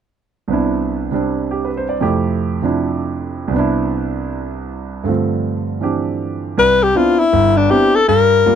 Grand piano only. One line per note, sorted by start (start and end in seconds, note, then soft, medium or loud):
0.48 2.00 C2 soft
0.48 1.10 C3 soft
0.48 2.02 B3 soft
0.52 1.13 D4 soft
0.52 2.01 E4 soft
1.11 2.00 C3 soft
1.11 2.01 G3 soft
1.11 2.02 C4 soft
1.11 2.03 D4 soft
1.51 1.70 G4 soft
1.65 1.87 B4 soft
1.77 1.96 C5 soft
1.89 2.08 D5 soft
2.01 3.53 F2 soft
2.01 2.61 C3 soft
2.01 3.53 A3 soft
2.01 2.64 E4 soft
2.01 3.54 G4 medium
2.62 3.49 C3 soft
2.62 3.52 F3 soft
2.62 3.53 D4 soft
2.62 3.54 E4 soft
3.48 5.02 C2 medium
3.48 5.04 C3 soft
3.53 5.05 B3 soft
3.53 5.07 D4 soft
3.59 5.08 E4 medium
5.04 6.56 G2 soft
5.04 6.57 D3 soft
5.04 6.58 A3 soft
5.08 6.59 F3 soft
5.08 5.80 C4 soft
5.81 6.57 E3 soft
5.81 6.57 C4 soft
5.81 6.58 D4 soft
5.81 6.58 G4 soft
6.57 6.90 C2 medium
6.95 7.21 B3 soft
6.95 7.21 C4 soft
6.95 7.21 D4 soft
6.95 7.21 E4 soft
7.33 7.65 G1 medium
7.70 7.96 B3 medium
7.70 7.96 C4 soft
7.70 7.96 D4 soft
7.70 7.96 E4 medium
8.08 8.41 G2 medium
8.46 8.55 G3 soft
8.46 8.55 A#3 soft
8.46 8.55 F4 medium